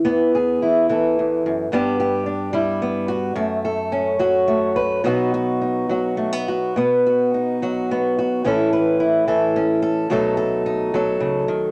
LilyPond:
\new Staff \with { instrumentName = "Steel-string acoustic guitar" } { \time 3/4 \key b \mixolydian \tempo 4 = 108 << { b8 gis'8 e'8 a'4. | <g b d' g'>8 g'8 d'8 e'8 b8 fis'8 | a8 a'8 cis'8 fis'8 a8 b'8 | <fis b dis' fis'>8 fis'8 dis'8 fis'8 a16 b16 fis'8 |
b8 fis'8 dis'8 fis'8 b8 fis'8 | <e cis' e' a'>8 b'8 e'8 a'8 cis'8 a'8 | <fis a dis' a'>8 a'8 dis'8 a'4. | } \\ { <e, e>4. e8 e,8 fis,8 | g,4. g4. | fis,4. fis4. | b,4. fis4. |
b,4. fis4. | a,4. e4. | b,4. fis8 cis8 dis8 | } >> }